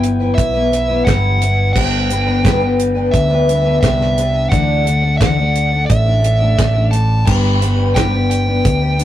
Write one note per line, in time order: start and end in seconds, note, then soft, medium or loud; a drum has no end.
0.00 0.34 G1 loud
0.00 0.21 F#3 medium
0.00 0.21 B3 medium
0.00 0.20 E4 medium
0.00 0.19 B4 medium
0.00 0.34 G5 medium
0.00 closed hi-hat medium
0.20 0.56 F#3 soft
0.20 0.55 B3 soft
0.20 0.54 E4 medium
0.20 0.52 B4 soft
0.35 1.03 B1 loud
0.35 1.04 E5 medium
0.35 kick loud
0.35 closed hi-hat loud
0.54 0.69 F#3 soft
0.54 0.69 B3 soft
0.54 0.71 E4 medium
0.54 0.71 B4 medium
0.70 0.88 F#3 medium
0.70 0.89 B3 medium
0.70 0.88 E4 medium
0.70 0.87 B4 medium
0.70 closed hi-hat medium
0.88 1.05 F#3 soft
0.88 1.06 B3 soft
0.88 1.06 E4 medium
0.88 1.06 B4 medium
1.05 1.72 G1 loud
1.05 1.40 G2 medium
1.05 1.41 E3 medium
1.05 1.39 F#3 medium
1.05 1.41 B3 medium
1.05 1.41 E4 medium
1.05 1.42 B4 medium
1.05 1.73 F#5 medium
1.05 kick loud
1.05 snare loud
1.05 closed hi-hat medium
1.40 1.75 F#3 medium
1.40 1.75 B3 medium
1.40 1.76 E4 medium
1.40 1.76 B4 medium
1.40 closed hi-hat medium
1.73 3.09 G1 loud
1.73 2.09 G2 medium
1.73 2.10 D3 medium
1.73 2.08 G3 medium
1.73 2.10 B3 medium
1.73 2.10 D4 loud
1.73 2.11 B4 medium
1.73 3.11 G5 medium
1.73 kick loud
1.73 crash medium
2.09 2.27 G3 medium
2.09 2.27 B3 medium
2.09 2.26 D4 medium
2.09 2.25 B4 medium
2.09 closed hi-hat medium
2.26 2.43 G3 soft
2.26 2.44 B3 soft
2.26 2.44 D4 medium
2.26 2.44 B4 medium
2.43 2.61 G2 medium
2.43 2.61 D3 medium
2.43 2.62 G3 medium
2.43 2.61 B3 medium
2.43 2.60 D4 medium
2.43 2.59 B4 medium
2.43 kick loud
2.43 snare loud
2.43 closed hi-hat loud
2.60 2.97 G3 medium
2.60 2.96 B3 medium
2.60 2.95 D4 medium
2.60 2.94 B4 medium
2.80 closed hi-hat medium
2.95 3.32 G3 soft
2.95 3.31 B3 soft
2.95 3.30 D4 soft
2.95 3.29 B4 medium
3.12 3.79 D2 loud
3.12 3.78 E5 medium
3.12 kick loud
3.12 closed hi-hat medium
3.30 3.46 G3 soft
3.30 3.48 B3 soft
3.30 3.48 D4 soft
3.30 3.48 B4 medium
3.48 3.65 G3 medium
3.48 3.66 B3 medium
3.48 3.64 D4 medium
3.48 3.63 B4 medium
3.48 closed hi-hat medium
3.65 3.83 G3 soft
3.65 3.83 B3 soft
3.65 3.83 D4 soft
3.65 3.82 B4 medium
3.81 4.48 C2 loud
3.81 4.17 G2 medium
3.81 4.18 D3 medium
3.81 4.15 G3 medium
3.81 4.17 B3 medium
3.81 4.18 D4 medium
3.81 4.49 E5 medium
3.81 kick loud
3.81 snare loud
3.81 closed hi-hat medium
3.85 4.18 B4 medium
4.01 snare soft
4.17 4.51 G3 medium
4.17 4.51 B3 medium
4.17 4.51 D4 medium
4.17 4.52 B4 medium
4.17 closed hi-hat medium
4.50 5.85 D2 loud
4.50 4.85 D3 medium
4.50 4.86 E3 medium
4.50 4.83 A3 medium
4.50 4.84 D4 medium
4.50 4.86 F#4 medium
4.50 4.87 D5 medium
4.50 5.15 F#5 loud
4.50 kick loud
4.50 closed hi-hat medium
4.84 5.02 A3 medium
4.84 5.03 D4 medium
4.84 5.02 F#4 medium
4.84 5.01 D5 medium
4.84 closed hi-hat medium
5.02 5.19 A3 soft
5.02 5.19 D4 soft
5.02 5.20 F#4 soft
5.02 5.20 D5 soft
5.17 5.37 D3 medium
5.17 5.37 E3 medium
5.17 5.38 A3 medium
5.17 5.38 D4 medium
5.17 5.38 F#4 medium
5.17 5.84 F#5 medium
5.17 kick loud
5.17 closed hi-hat loud
5.22 5.37 D5 medium
5.22 snare loud
5.38 5.74 A3 soft
5.38 5.73 D4 soft
5.38 5.72 F#4 medium
5.38 5.71 D5 medium
5.55 closed hi-hat medium
5.72 6.08 A3 soft
5.72 6.07 D4 soft
5.72 6.06 F#4 soft
5.72 6.05 D5 soft
5.86 6.54 A1 medium
5.86 6.94 E5 medium
5.86 kick loud
5.86 closed hi-hat medium
6.06 6.21 A3 soft
6.06 6.22 D4 soft
6.06 6.23 F#4 medium
6.06 6.23 D5 medium
6.22 6.40 A3 medium
6.22 6.40 D4 medium
6.22 6.39 F#4 medium
6.22 6.38 D5 medium
6.22 closed hi-hat medium
6.39 6.57 A3 soft
6.39 6.57 D4 soft
6.39 6.58 F#4 soft
6.39 6.57 D5 medium
6.57 7.23 A1 loud
6.57 6.75 D3 medium
6.57 6.75 E3 medium
6.57 6.75 A3 medium
6.57 6.75 D4 medium
6.57 6.74 F#4 medium
6.57 6.73 D5 medium
6.57 kick loud
6.57 snare loud
6.57 closed hi-hat loud
6.74 6.89 A3 soft
6.74 6.91 D4 soft
6.74 6.92 F#4 soft
6.74 6.92 D5 medium
6.90 7.26 A3 medium
6.90 7.26 D4 medium
6.90 7.27 F#4 medium
6.90 7.27 D5 medium
6.90 7.26 A5 loud
6.90 closed hi-hat medium
7.25 8.61 G1 loud
7.25 7.61 G2 medium
7.25 7.61 G3 medium
7.25 7.58 B3 medium
7.25 7.60 D4 medium
7.25 7.61 G4 medium
7.25 7.62 B4 medium
7.25 7.98 B5 loud
7.25 kick loud
7.25 crash medium
7.59 7.78 B3 medium
7.59 7.77 D4 medium
7.59 7.77 G4 medium
7.59 7.75 B4 medium
7.59 closed hi-hat medium
7.77 7.94 B3 soft
7.77 7.94 D4 soft
7.77 7.95 G4 soft
7.77 7.95 B4 soft
7.94 8.12 G2 medium
7.94 8.13 G3 medium
7.94 8.13 B3 medium
7.94 8.13 D4 medium
7.94 8.11 G4 medium
7.94 8.10 B4 medium
7.94 8.29 G5 loud
7.94 kick loud
7.94 snare loud
7.94 closed hi-hat loud
8.12 8.48 B3 soft
8.12 8.47 D4 medium
8.12 8.46 G4 medium
8.12 8.45 B4 medium
8.30 9.04 G5 loud
8.30 closed hi-hat medium
8.46 8.82 B3 soft
8.46 8.81 D4 soft
8.46 8.81 G4 soft
8.46 8.79 B4 soft
8.65 9.04 D2 medium
8.65 kick loud
8.65 closed hi-hat medium
8.80 8.96 B3 soft
8.80 8.97 D4 soft
8.80 8.98 G4 medium
8.80 8.98 B4 soft
8.97 9.04 B3 medium
8.97 9.04 D4 medium
8.97 9.04 G4 medium
8.97 9.04 B4 medium
8.97 closed hi-hat medium